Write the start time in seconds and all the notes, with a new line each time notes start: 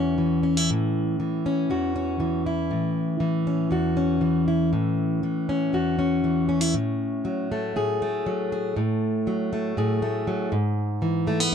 Already playing: E2 E3 C#4 E4 F#4
0.18 E3
0.43 C#4
0.57 E4
0.70 A2
1.20 E3
1.46 C#4
1.70 E2 F#4
1.96 C#4
2.20 E3
2.46 E4
2.71 A2
3.20 E3
3.47 C#4
3.71 E2 F#4
3.97 C#4
4.21 E3
4.48 E4
4.73 A2
5.23 E3
5.49 C#4
5.73 E2 F#4
5.99 C#4
6.24 E3
6.49 C#4
6.61 E4
6.74 A2
7.25 F#3
7.52 A3
7.76 A2 G#4
8.02 A3
8.26 F#3
8.52 G#4
8.76 A2
9.27 F#3
9.53 A3
9.77 A2 G#4
10.02 A3
10.27 F#3
10.52 G#2
11.02 E3
11.27 A3
11.40 B3